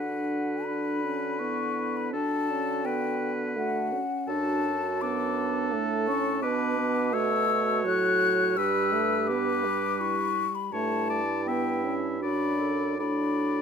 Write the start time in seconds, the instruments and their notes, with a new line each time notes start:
Already playing: bassoon D3, french horn D4, clarinet F#4, oboe B4, flute F#5
0.66 french horn D4, flute B5
1.04 french horn C#4
1.39 french horn B3, clarinet E4, flute C#6
1.97 flute B5
2.13 bassoon D3, french horn D4, clarinet F#4, oboe A4, flute A5
2.51 french horn C#4
2.85 french horn B3, oboe B4, flute G5
3.56 french horn A3, clarinet F#4, flute F#5
3.93 french horn C#4
4.27 bassoon F#2, french horn D4, clarinet F#4, oboe A4, flute A5
5.01 french horn B3, clarinet D4, oboe A4, flute D6
5.73 bassoon A2, french horn A3
6.08 french horn C#4, flute C#6
6.42 bassoon B2, french horn B3, clarinet D4, oboe B4, flute D6
6.78 french horn B3
7.13 french horn A3, clarinet F#4, oboe C#5, flute E6
7.48 clarinet F#4
7.84 bassoon A2, french horn F#3, flute F#6
8.57 bassoon G2, french horn G3, clarinet G4, oboe B4, flute E6
8.92 french horn A3
9.27 french horn B3, clarinet G4, oboe B4, flute D6
9.64 french horn G3
10.01 clarinet E4, flute C#6
10.55 flute B5
10.73 bassoon G2, french horn A3, clarinet E4, oboe C#5, flute A5
11.10 oboe D5
11.46 french horn B3, oboe E5, flute G5
11.85 french horn C#4
12.21 bassoon F#2, french horn D4, clarinet F#4, oboe D5, flute B5
12.59 clarinet A4
12.99 bassoon A2, french horn D4, clarinet F#4, oboe D5, flute B5